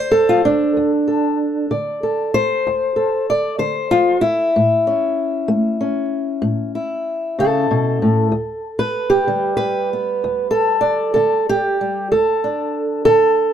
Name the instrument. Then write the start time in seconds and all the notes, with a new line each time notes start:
steel-string acoustic guitar
Already playing: D3 A4 C5
0.11 A4
0.29 F4
0.45 D4
0.77 D2
1.08 A4
1.71 D3 D5
2.03 A4
2.34 C5
2.67 D2
2.96 A4
3.30 D5
3.59 D3 C5
3.91 F4
4.21 E4
4.56 A2
4.87 C#4
5.48 A3
5.81 C#4
6.42 A2
6.75 E4
7.39 C#3 A4
7.71 B2
8.02 A2
8.32 D2
8.79 B4
9.10 G4
9.27 D3 G3
9.57 B4
9.93 B3
10.24 D2
10.51 A4
10.81 D5
11.14 D3 A4
11.49 G4
11.81 G3
12.12 D2 A4
12.44 D4
13.05 D3 A4